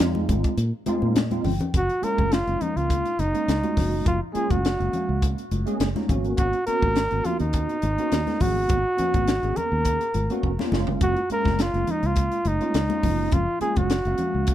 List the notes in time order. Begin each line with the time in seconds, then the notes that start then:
Already playing: G#3 C4 D#4 F4
0.00 F2, snare
0.15 high conga
0.29 G#1, kick, closed hi-hat, high conga, low conga
0.44 muted fingered electric bass stroke, kick, closed hi-hat
0.57 A#2, closed hi-hat
0.86 G#3 C4 D#4 F4 C5, muted fingered electric bass stroke, closed hi-hat, high conga
1.02 A#2, high conga
1.16 D#5, snare, closed hi-hat, high conga
1.30 G#3 C4 D#4 F4, closed hi-hat, high conga
1.44 G1 G5, open hi-hat, low conga
1.60 D#4 F4, closed hi-hat, low conga
1.74 F#1 F#4, kick, closed hi-hat, low conga
1.90 closed hi-hat
2.02 G#3 A#3 C#4 F4 A#4, muted fingered electric bass stroke, closed hi-hat
2.18 F#1, kick, high conga
2.32 F4, snare, closed hi-hat
2.47 F#1 G#3 A#3 C#4 D#4, closed hi-hat
2.61 D#4, muted fingered electric bass stroke, closed hi-hat, low conga
2.76 C#2 F4, closed hi-hat
2.90 kick, closed hi-hat
3.06 closed hi-hat
3.19 F#1 D#4, closed hi-hat, high conga
3.33 G#3 A#3 C#4 D#4, closed hi-hat
3.48 C#2, snare, closed hi-hat
3.62 G#3 A#3 C#4 F#4, closed hi-hat, high conga
3.77 F#1, kick, snare, open hi-hat, high conga, low conga
4.06 F#1 F4, kick, closed hi-hat, low conga
4.33 G#3 A#3 C#4 F4 G#4, muted fingered electric bass stroke, closed hi-hat
4.50 F#1 F#4, kick, closed hi-hat, high conga
4.65 snare, closed hi-hat
4.78 F#1 G#3 A#3 C#4 F5, closed hi-hat
4.93 muted fingered electric bass stroke, closed hi-hat, low conga
5.09 C#2
5.22 kick, closed hi-hat
5.38 closed hi-hat
5.51 F#1, closed hi-hat, high conga
5.66 G#3 A#3 C#4 G#4, closed hi-hat
5.80 F#1, snare, closed hi-hat
5.95 G#3 A#3 C#4 D#4, snare, closed hi-hat, high conga
6.09 G#1 A#3 B3 C#4 F#4, kick, closed hi-hat, high conga, low conga
6.25 closed hi-hat
6.37 G#1 F#4, kick, closed hi-hat, low conga
6.53 closed hi-hat
6.66 A#3 B3 C#4 F#4 A#4, muted fingered electric bass stroke, closed hi-hat
6.82 G#1, kick, high conga
6.96 snare, closed hi-hat
7.11 G#1 A#3 B3 C#4 F#4, closed hi-hat
7.25 F4, closed hi-hat, low conga
7.40 D#2 D#4, closed hi-hat
7.53 kick, closed hi-hat
7.69 closed hi-hat
7.82 G#1, closed hi-hat, high conga
7.98 A#3 B3 C#4 F#4, closed hi-hat
8.12 D#2, snare, closed hi-hat
8.26 A#3 B3 C#4 G#4, snare, closed hi-hat, high conga
8.40 G#1 F#4, kick, open hi-hat, high conga, low conga
8.69 G#1, kick, closed hi-hat, low conga
8.97 A#3 B3 C#4 F#4, muted fingered electric bass stroke, closed hi-hat, low conga
9.14 G#1, kick, closed hi-hat, high conga
9.28 snare, closed hi-hat
9.42 G#1 A#3 B3 C#4 G#4, closed hi-hat
9.56 A#4, closed hi-hat, low conga
9.72 D#2
9.85 kick, closed hi-hat
10.01 closed hi-hat
10.14 G#1, closed hi-hat, high conga
10.30 A#3 B3 C#4 F#4, closed hi-hat
10.43 F1, kick
10.58 A#3 B3 C#4 F4, snare, high conga
10.71 F#1 G#3 A#3 C#4 F4, snare, high conga, low conga
10.87 floor tom
11.01 F#1 F#4, kick, closed hi-hat, low conga
11.17 closed hi-hat
11.30 G#3 A#3 C#4 F4 A#4, muted fingered electric bass stroke, closed hi-hat
11.45 F#1, kick, snare, high conga
11.59 F4, snare, closed hi-hat
11.74 F#1 G#3 A#3 C#4 F4, closed hi-hat
11.87 D#4, closed hi-hat, low conga
12.03 C#2 F4, closed hi-hat
12.16 kick, closed hi-hat
12.32 closed hi-hat
12.45 F#1 D#4, closed hi-hat, high conga
12.60 G#3 A#3 C#4 F4, closed hi-hat
12.74 C#2, snare, closed hi-hat
12.88 G#3 A#3 C#4 F4, closed hi-hat, high conga
13.03 F#1, kick, open hi-hat, high conga, low conga
13.32 F#1 F4, kick, closed hi-hat, low conga
13.60 G#3 A#3 C#4 F4 G#4, muted fingered electric bass stroke, closed hi-hat
13.76 F#1 F#4, kick, closed hi-hat, high conga
13.90 snare, closed hi-hat
14.05 F#1 G#3 A#3 C#4 F5, closed hi-hat
14.18 closed hi-hat, low conga
14.34 C#2
14.47 kick, closed hi-hat